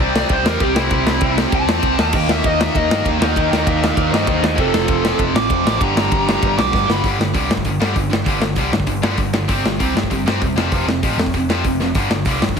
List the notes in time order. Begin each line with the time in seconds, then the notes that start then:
Already playing: C3 G3 C4 D5
0.00 C2 G3 C4
0.16 snare
0.29 C2 C5, kick, ride
0.44 E2 C3 G3 C4 A#4, snare
0.60 C2 G4, kick, ride
0.74 C2 C3 G3 C4 E4, snare
0.91 C2, kick, ride
1.06 C2, snare
1.20 C2 C3 G3 C4, kick, ride
1.38 snare
1.52 C2 A5, kick, ride
1.66 E2 C3 G3 C4, snare
1.82 C2, kick, ride
1.97 D#2 D#3 A#3 D#4, snare
2.13 D#2 D#3 A#3 D#4 G5, kick, crash
2.27 D#2 E5, snare
2.42 D#2 D#3 A#3 D#4, kick, ride
2.46 D#5
2.61 E5, snare
2.74 D#2 D#5, kick, ride
2.88 G2 D#3 A#3 D#4, snare
3.05 D#2, kick, ride
3.19 D#2 D#3 A#3 D#4, snare
3.23 D#5 G5
3.36 D#2 D#3 A#3 D#4 D#5 G5, kick, ride
3.51 D#2 D#5 G5, snare
3.65 D#2 D#3 A#3 D#4 D5 F5, kick, ride
3.82 D5 F5, snare
3.96 D#2 D5 F5, kick, ride
4.10 G2 D#3 A#3 D#4 C5 D#5, snare
4.27 D#2 C5 D#5, kick, ride
4.42 D#2 D#3 A#3 D#4 C5 D#5, snare
4.56 F1 F2 C3 F3 A4, kick, ride
4.74 F1, snare
4.88 F1, kick, ride
5.03 F2 C3 F3, snare
5.19 F1, kick, ride
5.34 A1 D6, snare
5.48 F1 F2 C3 F3, kick, ride
5.65 A1 F2 C3 F3, snare
5.79 G1 G2 D3 G3 A#5, kick, ride
5.95 G1 A#5, snare
6.12 G1, kick, ride
6.26 G2 D3 G3 A#5, snare
6.43 G1, kick, ride
6.58 B1 D6, snare
6.71 G1 G2 D3 G3, kick, snare
6.87 G1 G2 D3 G3 B5, snare
7.03 G1 G2 D3 G3, kick, open hi-hat
7.19 G1 G2 D3, snare
7.34 C2 G2 D3 G3, kick, open hi-hat
7.49 G2 D3, snare
7.57 kick
7.65 G1 G2 D3, kick, open hi-hat
7.80 G2 D3 G3, snare
7.95 G1 G2 D3, kick, open hi-hat
8.10 G2 D3, snare
8.24 G1 G2 D3 G3, kick, open hi-hat
8.40 G1 G2 D3, snare
8.56 C2 G2 D3 G3, kick, open hi-hat
8.72 G2 D3, snare
8.80 kick
8.87 G1 G2 D3, kick, open hi-hat
9.03 G2 D3 G3, snare
9.17 G1 G2 D3, kick, open hi-hat
9.33 G2 D3, snare
9.48 G1 C3 G3 C4, kick, open hi-hat
9.63 G1 C3 G3, snare
9.80 C2 C3 G3 C4, kick, open hi-hat
9.93 G2 C3 G3, snare
10.03 kick
10.11 G1 C3 G3, kick, open hi-hat
10.24 G2 C3 G3 C4, snare
10.40 E1 C3 G3, kick, open hi-hat
10.55 F1 F2 C3 F3, snare
10.72 F1 F2 C3 F3, kick, open hi-hat
10.86 F1 F2 C3, snare
11.03 A1 F2 C3 F3, kick, open hi-hat
11.17 F2 C3, snare
11.26 kick
11.34 F1 F2 C3, kick, open hi-hat
11.48 F2 C3 F3, snare
11.64 F1 F2 C3, kick, open hi-hat
11.80 F2 C3, snare
11.95 G1 G2 D3 G3, kick, open hi-hat
12.10 G1 G2 D3, snare
12.25 C2 G2 D3 G3, kick, open hi-hat
12.41 G2 D3, snare
12.49 kick
12.56 G1 G2 D3, kick